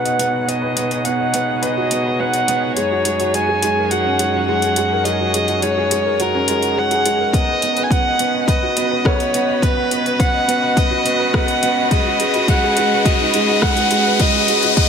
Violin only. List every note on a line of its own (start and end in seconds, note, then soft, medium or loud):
0.00 0.50 F#5 loud
0.48 1.07 D#5 medium
1.05 1.64 F#5 loud
1.63 2.21 D#5 medium
2.20 2.76 F#5 loud
2.77 3.35 C#5 loud
3.34 3.92 G#5 loud
3.91 4.47 F#5 loud
4.47 5.06 F#5 loud
5.05 5.64 D#5 loud
5.63 6.23 C#5 loud
6.21 6.79 A#4 medium
6.78 7.35 F#5 loud
7.33 7.85 D#5 loud
7.83 7.92 G#5 medium
7.91 8.48 F#5 loud
8.49 9.08 D#5 medium
9.06 9.64 C#5 loud
9.62 10.22 B4 loud
10.20 10.79 F#5 loud
10.77 11.36 D#5 loud
11.35 11.92 F#5 loud
11.92 12.51 D#5 medium
12.49 13.07 F#5 loud
13.06 13.64 D#5 loud
13.63 14.22 F#5 loud
14.21 14.77 D#5 loud
14.77 14.89 D#5 loud